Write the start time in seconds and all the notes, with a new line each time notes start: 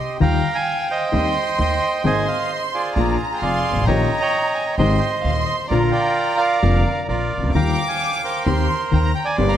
Already playing: G4 D#5 C6
0.20 D#2 D#3 G3 A#3 F4 F5 G5 A#5
0.55 F5 G#5
0.90 C5 D#5 G5
1.12 D#2 D#3 G3 C4 G4 C6
1.58 D#2 D#3 C5 D#5 G5
2.04 G#1 G#2 D#3 A#3 C4 G#4 C5 D#5 G#5 C6
2.28 F5
2.53 D#5
2.74 F4 G#4 D5
2.96 A#1 A#2 F3 A#3 D4 G#4 A#5
3.34 G5
3.41 F1 F2 G#4 D5 F5 C6
3.70 G1
3.76 G#1
3.82 A1
3.87 A#1 A#2 D#3 A#3 C#4 G4 C#5 D#5 G5 A#5
4.21 C#5 G5 A#5
4.55 G#5
4.78 G#1 G#2 D#3 G#3 C4 G4 C5 D#5 G5 C6
5.00 G5
5.21 D#2 F5
5.25 D#1 D#2 C6
5.45 D#5
5.68 A#1 A#2 D3 F3 A#3 F4 A#4 D5 A#5
5.91 A#4 D5 G5
6.37 A#4 D5 F5
6.63 F1 F2 D3 F3 A#3 F4
7.08 A#1 A#2 F4 A#4 D5
7.38 C2
7.43 C#2
7.49 D2
7.54 D#2 D#3 G3 A#3 F4 F5 G5 A#5 D6
7.88 F5 G#5
8.24 A#4 C5 G5
8.46 D#2 D#3 A#3 C4 G4 C6
8.91 D#2 D#3 G5 A#5
9.05 A#5
9.15 G5
9.25 D5 G#5
9.38 G1 G2 D3 G3 A#3 G4 C6
9.49 A#5